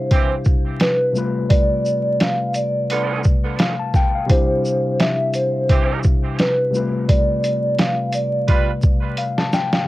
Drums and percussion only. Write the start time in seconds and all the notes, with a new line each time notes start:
0.11 kick, closed hi-hat
0.45 kick, shaker
0.80 snare, closed hi-hat
1.15 shaker
1.50 kick, closed hi-hat
1.86 shaker
2.20 snare, closed hi-hat
2.54 closed hi-hat, shaker
2.90 closed hi-hat
3.24 kick, shaker
3.59 snare, closed hi-hat
3.94 kick, snare, shaker
4.30 kick, closed hi-hat
4.65 shaker
5.00 snare, closed hi-hat
5.34 closed hi-hat, shaker
5.69 kick, closed hi-hat
6.03 kick, shaker
6.38 snare, closed hi-hat
6.74 shaker
7.09 kick, closed hi-hat
7.44 closed hi-hat, shaker
7.79 snare, closed hi-hat
8.12 closed hi-hat, shaker
8.48 kick, closed hi-hat
8.82 kick, shaker
9.17 closed hi-hat
9.38 snare
9.53 snare, shaker
9.73 snare